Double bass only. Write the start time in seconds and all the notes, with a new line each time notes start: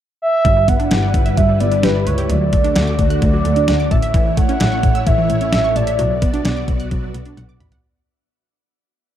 0.45 G1
0.91 G1
1.14 G1
1.38 G1
1.60 G1
1.83 G1
2.06 C#2
2.30 D2
2.76 D2
2.99 D2
3.22 D2
3.45 D2
3.68 D2
3.91 A1
4.60 A1
4.83 A1
5.07 A1
5.30 A1
5.53 A1
5.76 A1
5.99 B1
6.45 B1
6.68 B1
6.91 B1
7.14 B1
7.37 B1
7.60 A1